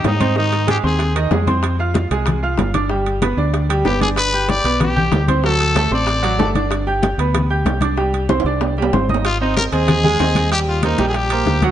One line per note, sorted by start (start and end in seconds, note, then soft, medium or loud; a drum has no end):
0.00 0.15 D#4 medium
0.00 0.15 D#5 medium
0.00 0.15 D#6 medium
0.04 0.78 G#2 medium
0.04 0.35 D#4 medium
0.04 high bongo medium
0.04 low bongo medium
0.04 high conga medium
0.04 high timbale medium
0.04 low timbale medium
0.20 0.33 C4 medium
0.20 0.34 C5 medium
0.20 0.34 C6 medium
0.20 high bongo soft
0.20 high conga medium
0.20 high timbale medium
0.36 0.62 D#3 medium
0.36 0.62 D#4 medium
0.36 0.67 D#4 medium
0.36 0.63 D#5 medium
0.36 high bongo medium
0.36 high conga soft
0.52 high bongo soft
0.52 high conga soft
0.52 high timbale medium
0.67 0.81 G#3 medium
0.67 0.77 G4 medium
0.67 0.81 G#4 medium
0.67 0.81 G#5 medium
0.67 high bongo medium
0.67 high conga medium
0.67 high timbale medium
0.67 low timbale medium
0.83 1.28 D#2 medium
0.83 1.10 C4 medium
0.83 1.15 G#4 medium
0.83 1.10 C5 medium
0.83 1.10 C6 medium
0.83 high bongo soft
0.83 high conga soft
0.99 high bongo medium
0.99 high conga soft
0.99 high timbale medium
1.16 1.29 D#3 medium
1.16 1.29 D#4 medium
1.16 1.29 D#5 medium
1.16 high bongo soft
1.16 high conga soft
1.16 high timbale medium
1.31 2.05 F2 medium
1.31 1.45 G#3 medium
1.31 1.45 G#4 medium
1.31 1.45 G#5 medium
1.31 high bongo medium
1.31 low bongo medium
1.31 high conga medium
1.31 low timbale medium
1.47 1.74 C4 medium
1.47 1.73 C5 medium
1.47 1.74 C6 medium
1.47 high conga medium
1.47 high timbale medium
1.63 high bongo medium
1.63 high conga soft
1.63 high timbale medium
1.79 2.06 F4 medium
1.79 2.06 F5 medium
1.79 2.06 F6 medium
1.79 high bongo soft
1.79 high conga soft
1.94 high bongo medium
1.94 high conga medium
1.94 high timbale medium
1.94 low timbale medium
2.11 2.55 C2 medium
2.11 2.37 G#3 medium
2.11 2.38 G#4 medium
2.11 2.38 G#5 medium
2.11 high bongo soft
2.11 high conga soft
2.11 high timbale medium
2.26 high bongo medium
2.26 high conga soft
2.26 low conga medium
2.26 high timbale medium
2.43 2.69 F4 medium
2.43 2.69 F5 medium
2.43 2.69 F6 medium
2.43 high conga soft
2.58 3.32 G1 medium
2.58 high bongo medium
2.58 low bongo medium
2.58 high conga medium
2.58 high timbale medium
2.58 low timbale medium
2.74 2.87 D4 medium
2.74 2.88 D5 medium
2.74 2.88 D6 medium
2.74 high bongo soft
2.74 high conga medium
2.74 high timbale medium
2.90 3.16 G3 medium
2.90 3.16 G4 medium
2.90 3.17 G5 medium
2.90 high bongo medium
2.90 high conga soft
3.06 high bongo soft
3.06 high conga soft
3.06 high timbale medium
3.22 3.35 B3 medium
3.22 3.36 B4 medium
3.22 3.36 B5 medium
3.22 high bongo medium
3.22 high conga medium
3.22 high timbale medium
3.22 low timbale medium
3.37 3.82 D2 medium
3.37 3.64 D4 medium
3.37 3.64 D5 medium
3.37 3.64 D6 medium
3.37 high bongo soft
3.37 high conga soft
3.54 high bongo medium
3.54 high conga soft
3.54 high timbale medium
3.69 3.83 G3 medium
3.69 3.83 G4 medium
3.69 3.83 G5 medium
3.69 high bongo soft
3.69 high conga soft
3.69 high timbale loud
3.85 4.59 G1 medium
3.85 3.98 B3 medium
3.85 4.01 G4 medium
3.85 3.99 B4 medium
3.85 3.99 B5 medium
3.85 high bongo medium
3.85 low bongo medium
3.85 high conga medium
3.85 low timbale medium
4.00 4.27 D4 medium
4.00 4.09 G#4 medium
4.00 4.27 D5 medium
4.00 4.27 D6 medium
4.00 high conga medium
4.00 high timbale medium
4.16 4.51 B4 loud
4.16 high bongo medium
4.16 high conga soft
4.16 high timbale medium
4.33 4.59 G4 medium
4.33 4.60 G5 medium
4.33 4.60 G6 medium
4.33 high bongo soft
4.33 high conga soft
4.48 4.81 D5 loud
4.48 high bongo medium
4.48 high conga medium
4.48 high timbale medium
4.48 low timbale medium
4.64 5.09 B1 medium
4.64 4.91 B3 medium
4.64 4.91 B4 medium
4.64 4.91 B5 medium
4.64 high bongo soft
4.64 high conga soft
4.64 high timbale medium
4.80 5.26 G4 medium
4.80 high bongo medium
4.80 high conga soft
4.80 low conga medium
4.80 high timbale medium
4.96 5.22 G4 medium
4.96 5.23 G5 medium
4.96 5.23 G6 medium
4.96 high conga soft
4.96 low conga medium
5.12 5.86 D2 medium
5.12 high bongo medium
5.12 low bongo medium
5.12 high conga medium
5.12 high timbale medium
5.12 low timbale medium
5.27 5.41 C4 medium
5.27 5.42 C5 medium
5.27 5.42 C6 medium
5.27 high bongo soft
5.27 high conga medium
5.27 high timbale medium
5.44 5.70 F#3 medium
5.44 5.71 F#4 medium
5.44 5.89 A4 loud
5.44 5.71 F#5 medium
5.44 high bongo medium
5.44 high conga soft
5.60 high bongo soft
5.60 high conga soft
5.60 high timbale medium
5.75 5.89 A3 medium
5.75 5.89 A4 medium
5.75 5.90 A5 medium
5.75 high bongo medium
5.75 high conga medium
5.75 high timbale medium
5.75 low timbale medium
5.91 6.36 A1 medium
5.91 6.18 C4 medium
5.91 6.18 C5 medium
5.91 6.52 D5 medium
5.91 6.18 C6 medium
5.91 high bongo soft
5.91 high conga soft
6.07 high bongo medium
6.07 high conga soft
6.07 high timbale medium
6.23 6.36 F#3 medium
6.23 6.36 F#4 medium
6.23 6.36 F#5 medium
6.23 high bongo soft
6.23 high conga soft
6.23 high timbale medium
6.38 7.13 G1 medium
6.38 6.52 A3 medium
6.38 6.52 A4 medium
6.38 6.53 A5 medium
6.38 high bongo medium
6.38 low bongo medium
6.38 high conga medium
6.38 low timbale medium
6.55 6.81 D4 medium
6.55 6.82 D5 medium
6.55 6.82 D6 medium
6.55 high conga medium
6.55 high timbale medium
6.71 high bongo medium
6.71 high conga soft
6.71 high timbale medium
6.87 7.13 G4 medium
6.87 7.13 G5 medium
6.87 7.14 G6 medium
6.87 high bongo soft
6.87 high conga soft
7.02 high bongo medium
7.02 high conga medium
7.02 high timbale medium
7.02 low timbale medium
7.18 7.63 D2 loud
7.18 7.45 B3 medium
7.18 7.45 B4 medium
7.18 7.46 B5 medium
7.18 high bongo soft
7.18 high conga soft
7.18 high timbale medium
7.34 high bongo medium
7.34 high conga soft
7.34 low conga medium
7.34 high timbale medium
7.50 7.77 G4 medium
7.50 7.77 G5 medium
7.50 7.77 G6 medium
7.50 high conga soft
7.65 8.40 C2 medium
7.65 high bongo medium
7.65 low bongo medium
7.65 high conga medium
7.65 high timbale medium
7.65 low timbale medium
7.81 7.95 D4 medium
7.81 7.95 D5 medium
7.81 7.95 D6 medium
7.81 high bongo soft
7.81 high conga medium
7.81 high timbale medium
7.97 8.24 G3 medium
7.97 8.24 G4 medium
7.97 8.24 G5 medium
7.97 high bongo medium
7.97 high conga soft
8.13 high bongo soft
8.13 high conga soft
8.13 high timbale medium
8.29 8.42 C4 medium
8.29 8.43 C5 medium
8.29 8.43 C6 medium
8.29 high bongo medium
8.29 high conga medium
8.29 high timbale medium
8.40 high timbale medium
8.44 8.89 C2 medium
8.44 8.72 D4 medium
8.44 8.72 D5 medium
8.44 8.72 D6 medium
8.44 high bongo soft
8.44 high conga soft
8.61 high bongo medium
8.61 high conga soft
8.61 low timbale medium
8.77 8.91 G3 medium
8.77 8.91 G4 medium
8.77 8.91 G5 medium
8.77 high bongo soft
8.77 high conga soft
8.82 low timbale loud
8.93 9.67 G#1 medium
8.93 9.06 C4 medium
8.93 9.06 C5 medium
8.93 9.06 C6 medium
8.93 high bongo medium
8.93 low bongo medium
8.93 high conga medium
8.93 low timbale medium
9.09 9.22 D#4 medium
9.09 9.23 D#5 medium
9.09 9.23 D#6 medium
9.09 high conga medium
9.14 low timbale medium
9.25 9.40 F4 loud
9.25 high bongo medium
9.25 high conga soft
9.25 high timbale medium
9.41 9.67 C4 medium
9.41 9.56 D#4 medium
9.41 9.67 C5 medium
9.41 9.68 D#5 medium
9.41 high conga soft
9.56 9.64 A#4 loud
9.56 high bongo medium
9.56 high conga loud
9.56 high timbale medium
9.72 10.17 D#2 loud
9.72 9.99 C4 medium
9.72 10.48 G#4 loud
9.72 9.99 C5 medium
9.72 9.99 D#5 medium
9.72 high conga soft
9.72 high timbale medium
9.88 high bongo medium
9.88 high conga soft
9.88 low conga medium
9.88 high timbale medium
10.04 10.17 G#3 medium
10.04 10.17 G#4 medium
10.04 10.18 G#5 medium
10.04 high conga soft
10.04 low conga medium
10.20 10.94 D#2 medium
10.20 10.46 C4 medium
10.20 10.46 C5 medium
10.20 10.47 D#5 medium
10.20 high bongo medium
10.20 low bongo medium
10.20 high timbale medium
10.20 low timbale medium
10.35 high conga medium
10.35 high timbale medium
10.51 10.78 G3 medium
10.51 10.78 G4 medium
10.51 10.59 G4 loud
10.51 10.78 G5 medium
10.51 high bongo medium
10.51 high conga soft
10.51 high timbale medium
10.66 10.83 F4 medium
10.66 high conga soft
10.83 10.97 A#3 medium
10.83 11.07 D#4 medium
10.83 10.97 A#4 medium
10.83 10.97 C5 medium
10.83 high bongo medium
10.83 high conga medium
10.83 high timbale medium
10.98 11.43 A#1 loud
10.98 11.25 G3 medium
10.98 11.25 G4 medium
10.98 11.25 G5 medium
10.98 high bongo soft
10.98 high conga loud
11.09 11.18 G#4 medium
11.14 11.63 G4 loud
11.14 high bongo medium
11.14 high conga soft
11.14 high timbale medium
11.30 11.57 A#3 medium
11.30 11.58 A#4 medium
11.30 11.58 C5 medium
11.30 high bongo soft
11.30 high conga soft
11.30 high timbale loud
11.46 11.71 D2 medium
11.46 high bongo medium
11.46 low bongo medium
11.46 high conga medium
11.62 11.71 F#3 medium
11.62 11.71 F#4 medium
11.62 11.71 F#5 medium
11.62 high bongo soft
11.62 high conga medium
11.62 high timbale medium